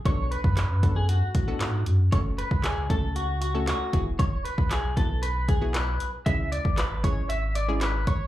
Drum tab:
HH |x-x-x-x-x-x-x-x-|x-x-x-x-x-x-x-x-|x-x-x-x-x-x-x-x-|x-x-x-x-x-x-x-x-|
CP |----x-------x---|----x-------x---|----x-------x---|----x-------x---|
SD |----o-------o---|----o-------o---|----o-------o---|----o-------o---|
BD |o--o--o---o-----|o--o--o-------o-|o--o--o---o-----|o--o--o-------o-|